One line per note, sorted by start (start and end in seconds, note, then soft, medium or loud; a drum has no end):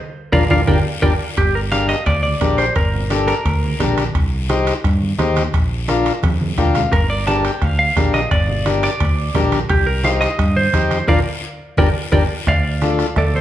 0.32 0.46 A#1 medium
0.32 0.44 D4 medium
0.32 0.44 F4 medium
0.32 0.44 A#4 medium
0.32 0.44 D5 medium
0.32 0.44 F5 medium
0.32 bombo low medium
0.32 high conga loud
0.32 high timbale medium
0.32 long guiro loud
0.50 0.63 A#1 medium
0.50 0.61 D4 loud
0.50 0.61 F4 medium
0.50 0.61 A#4 medium
0.50 0.62 A#4 medium
0.50 0.62 D5 medium
0.50 0.62 F5 loud
0.50 bombo low medium
0.50 high conga loud
0.50 high timbale medium
0.50 long guiro loud
0.67 0.81 G1 medium
0.67 0.79 D4 medium
0.67 0.79 G4 medium
0.67 0.79 A#4 loud
0.67 0.79 A#4 medium
0.67 0.79 D5 medium
0.67 0.79 G5 medium
0.67 bombo low loud
0.67 high conga loud
0.67 high timbale medium
0.67 long guiro loud
1.02 1.15 G1 medium
1.02 1.13 D4 medium
1.02 1.13 G4 medium
1.02 1.13 A#4 medium
1.02 1.14 A#4 medium
1.02 1.13 D5 medium
1.02 1.14 G5 medium
1.02 bombo low medium
1.02 high conga medium
1.02 high timbale medium
1.02 long guiro medium
1.37 1.93 G1 loud
1.37 1.54 G4 medium
1.37 bombo low medium
1.37 bombo rim medium
1.37 high conga soft
1.37 high timbale medium
1.37 long guiro medium
1.54 1.60 A#4 medium
1.54 high conga soft
1.72 1.96 D4 medium
1.72 1.96 G4 medium
1.72 1.96 A#4 medium
1.72 1.88 F5 loud
1.72 bombo rim medium
1.72 high conga medium
1.72 high timbale medium
1.72 short guiro medium
1.89 2.05 D#5 medium
1.89 bombo rim medium
1.89 high timbale medium
1.89 short guiro medium
2.06 2.34 D2 loud
2.06 2.22 D5 medium
2.06 bombo low medium
2.06 bombo rim medium
2.06 high timbale medium
2.06 long guiro medium
2.23 2.56 D5 loud
2.23 high conga medium
2.41 2.69 A#1 medium
2.41 2.65 D4 medium
2.41 2.66 G4 medium
2.41 2.66 A#4 medium
2.41 bombo low medium
2.41 bombo rim medium
2.41 high conga medium
2.41 high timbale medium
2.41 low timbale medium
2.41 short guiro medium
2.58 2.74 C5 medium
2.58 bombo rim medium
2.58 high timbale medium
2.58 short guiro medium
2.76 3.31 G1 loud
2.76 3.24 A#4 medium
2.76 bombo low medium
2.76 bombo rim medium
2.76 high conga soft
2.76 high timbale medium
2.76 long guiro medium
2.94 high conga soft
2.94 low conga medium
3.10 3.35 D4 medium
3.10 3.35 G4 medium
3.10 3.35 A4 medium
3.10 bombo rim medium
3.10 high conga medium
3.10 high timbale medium
3.10 short guiro medium
3.28 3.93 A#4 medium
3.28 bombo rim medium
3.28 high timbale medium
3.28 short guiro medium
3.45 3.73 D2 loud
3.45 bombo low medium
3.45 bombo rim medium
3.45 high timbale medium
3.45 long guiro medium
3.63 high conga medium
3.79 4.08 A#1 medium
3.79 4.04 D4 medium
3.79 4.04 G4 medium
3.79 4.05 A#4 medium
3.79 bombo rim medium
3.79 high conga medium
3.79 low conga medium
3.79 high timbale medium
3.79 low timbale medium
3.79 short guiro medium
3.97 bombo rim medium
3.97 high conga medium
3.97 high timbale medium
3.97 short guiro medium
4.15 4.70 C2 loud
4.15 bombo low medium
4.15 bombo rim medium
4.15 high conga soft
4.15 high timbale medium
4.15 long guiro medium
4.32 high conga soft
4.49 4.74 D#4 medium
4.49 4.74 G4 medium
4.49 4.74 C5 medium
4.49 bombo rim medium
4.49 high conga medium
4.49 high timbale medium
4.49 short guiro medium
4.67 bombo rim medium
4.67 high timbale medium
4.67 short guiro medium
4.84 5.12 G2 loud
4.84 bombo low medium
4.84 bombo rim medium
4.84 high timbale medium
4.84 long guiro medium
5.02 high conga medium
5.18 5.47 D#2 medium
5.18 5.43 D#4 medium
5.18 5.43 G4 medium
5.18 5.43 C5 medium
5.18 bombo rim medium
5.18 high conga medium
5.18 high timbale medium
5.18 low timbale medium
5.18 short guiro medium
5.36 bombo rim medium
5.36 high conga medium
5.36 high timbale medium
5.36 short guiro medium
5.54 6.09 A#1 loud
5.54 bombo low medium
5.54 bombo rim medium
5.54 high conga soft
5.54 high timbale medium
5.54 long guiro medium
5.71 high conga soft
5.88 6.13 D4 medium
5.88 6.13 F4 medium
5.88 6.13 A#4 medium
5.88 bombo rim medium
5.88 high conga medium
5.88 high timbale medium
5.88 short guiro medium
6.06 bombo rim medium
6.06 high timbale medium
6.06 short guiro medium
6.23 6.51 F2 loud
6.23 bombo low medium
6.23 bombo rim medium
6.23 high conga loud
6.23 high timbale medium
6.23 long guiro medium
6.41 high conga loud
6.58 6.86 D2 medium
6.58 6.82 D4 medium
6.58 6.82 F4 medium
6.58 6.83 A#4 medium
6.58 6.74 G5 medium
6.58 bombo low medium
6.58 bombo rim medium
6.58 low conga medium
6.58 high timbale medium
6.58 short guiro medium
6.75 6.91 F5 medium
6.75 bombo rim medium
6.75 low conga medium
6.75 high timbale medium
6.75 short guiro medium
6.92 7.48 G1 loud
6.92 7.09 A#4 loud
6.92 bombo low medium
6.92 bombo rim medium
6.92 high conga soft
6.92 high timbale medium
6.92 long guiro medium
7.10 7.27 D5 medium
7.10 high conga soft
7.27 7.52 D4 medium
7.27 7.52 G4 medium
7.27 7.52 A#4 medium
7.27 7.45 A5 loud
7.27 bombo rim medium
7.27 high conga medium
7.27 high timbale medium
7.27 short guiro medium
7.45 7.62 G5 loud
7.45 bombo rim medium
7.45 high timbale medium
7.45 short guiro medium
7.62 7.90 D2 loud
7.62 7.78 F5 medium
7.62 bombo low medium
7.62 bombo rim medium
7.62 high timbale medium
7.62 long guiro medium
7.79 8.11 F5 loud
7.96 8.24 A#1 medium
7.96 8.21 D4 medium
7.96 8.21 G4 medium
7.96 8.21 A#4 medium
7.96 bombo low medium
7.96 bombo rim medium
7.96 high conga medium
7.96 high timbale medium
7.96 low timbale medium
7.96 short guiro medium
8.14 8.30 D#5 medium
8.14 bombo rim medium
8.14 high conga medium
8.14 high timbale medium
8.14 short guiro medium
8.31 8.87 G1 loud
8.31 8.80 D5 medium
8.31 bombo low medium
8.31 bombo rim medium
8.31 high conga soft
8.31 high timbale medium
8.31 long guiro medium
8.49 high conga soft
8.49 low conga medium
8.66 8.90 D4 medium
8.66 8.90 G4 medium
8.66 8.90 A#4 medium
8.66 bombo rim medium
8.66 high conga loud
8.66 high timbale medium
8.66 short guiro medium
8.83 9.49 D5 loud
8.83 bombo rim medium
8.83 high timbale medium
8.83 short guiro medium
9.00 9.28 D2 loud
9.00 bombo low medium
9.00 bombo rim medium
9.00 high timbale medium
9.00 long guiro medium
9.34 9.63 A#1 medium
9.34 9.59 D4 medium
9.34 9.60 G4 medium
9.34 9.60 A#4 medium
9.34 bombo low medium
9.34 bombo rim medium
9.34 high conga medium
9.34 low conga medium
9.34 high timbale medium
9.34 low timbale medium
9.34 short guiro medium
9.52 bombo rim medium
9.52 high conga medium
9.52 high timbale medium
9.52 short guiro medium
9.69 10.25 C2 loud
9.69 9.86 G4 medium
9.69 bombo low medium
9.69 bombo rim medium
9.69 high conga soft
9.69 high timbale medium
9.69 long guiro medium
9.86 10.03 A#4 medium
9.86 high conga soft
10.04 10.29 D#4 medium
10.04 10.29 G4 medium
10.04 10.29 C5 medium
10.04 10.10 F5 medium
10.04 bombo rim medium
10.04 high conga loud
10.04 high timbale medium
10.04 short guiro medium
10.21 10.57 D#5 medium
10.21 bombo rim medium
10.21 high timbale medium
10.21 short guiro medium
10.39 10.67 G2 loud
10.39 bombo low medium
10.39 bombo rim medium
10.39 high timbale medium
10.39 long guiro medium
10.56 11.05 C5 medium
10.56 high conga medium
10.73 11.01 F2 medium
10.73 10.98 D#4 medium
10.73 10.98 G4 medium
10.73 10.99 C5 medium
10.73 bombo low medium
10.73 bombo rim medium
10.73 high conga medium
10.73 high timbale medium
10.73 short guiro medium
10.91 bombo rim medium
10.91 high conga medium
10.91 high timbale medium
10.91 short guiro medium
11.08 11.21 A#1 loud
11.08 11.20 D4 medium
11.08 11.20 F4 medium
11.08 11.20 A#4 medium
11.08 11.20 A#4 loud
11.08 11.20 D5 loud
11.08 11.19 F5 medium
11.08 bombo low loud
11.08 high conga loud
11.08 high timbale medium
11.08 long guiro loud
11.77 11.91 G1 loud
11.77 11.89 D4 medium
11.77 11.89 G4 medium
11.77 11.89 A#4 loud
11.77 11.89 A#4 medium
11.77 11.89 D5 medium
11.77 11.89 G5 medium
11.77 bombo low loud
11.77 high conga medium
11.77 high timbale loud
11.77 long guiro loud
12.12 12.25 G1 medium
12.12 12.24 D4 medium
12.12 12.24 G4 medium
12.12 12.24 A#4 medium
12.12 12.24 D5 medium
12.12 12.24 G5 medium
12.12 bombo low medium
12.12 high conga medium
12.12 high timbale loud
12.12 long guiro medium
12.47 13.03 D2 loud
12.47 13.13 D5 medium
12.47 13.13 F5 medium
12.47 bombo low medium
12.47 bombo rim medium
12.47 cowbell medium
12.47 high conga soft
12.47 long guiro medium
12.64 high conga soft
12.81 13.06 D4 medium
12.81 13.06 F4 medium
12.81 13.07 A4 medium
12.81 bombo rim medium
12.81 high conga medium
12.81 short guiro medium
12.99 bombo rim medium
12.99 short guiro medium
13.16 13.41 D2 loud
13.16 13.33 A4 medium
13.16 13.33 D5 medium
13.16 bombo low medium
13.16 bombo rim medium
13.16 cowbell medium
13.16 long guiro medium
13.34 13.41 A4 medium
13.34 13.41 C5 medium
13.34 high conga medium